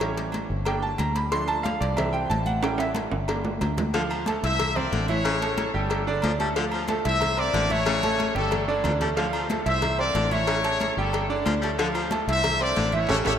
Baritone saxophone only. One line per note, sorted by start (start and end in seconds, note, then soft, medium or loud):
3.94 4.02 D3 loud
4.10 4.36 F3 medium
4.92 5.09 D3 medium
5.24 5.62 C#3 loud
6.23 6.32 F3 medium
6.40 6.49 G3 medium
6.57 6.65 D3 loud
6.73 6.99 F3 medium
7.54 7.71 D3 medium
7.86 8.24 C#3 loud
8.84 8.93 F3 medium
9.01 9.10 G3 medium
9.18 9.26 D3 medium
9.34 9.60 F3 medium
10.15 10.32 D3 medium
10.47 10.85 C#3 medium
11.46 11.54 F3 medium
11.62 11.70 G3 medium
11.78 11.87 D3 loud
11.94 12.21 F3 medium
12.76 12.93 D3 medium
13.10 13.39 C#3 loud